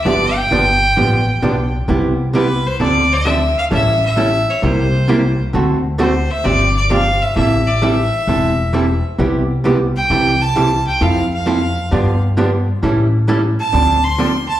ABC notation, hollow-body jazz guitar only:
X:1
M:4/4
L:1/8
Q:"Swing" 1/4=132
K:C
V:1 name="Hollow-body jazz guitar"
[D,F,B,DG] z [D,F,B,DG] z [D,F,B,DG] z [D,F,B,DG] z | [C,G,B,EG] z [C,G,B,EG] z [D,F,CDA] z [D,F,CDA] z | [E,G,^CEA] z [E,G,CEA] z [=C,G,_B,EG] z [C,G,B,EG] z | [D,A,C^FA] z [D,A,CFA] z [C,=F,CDG] z [C,F,CDG] z |
[E,G,CEA] z [E,G,CEA] z [E,G,CEA] z [E,G,CEA] z | [C,G,B,EG] z [C,G,B,EG] z [C,E,G,CEA] z [C,E,G,CEA] z | [F,CEA] z [F,CEA] z [D,F,B,DG] z [D,F,B,DG] z | [E,G,^CEA] z [E,G,CEA] z [D,F,=CDA] z [D,F,CDA] z |]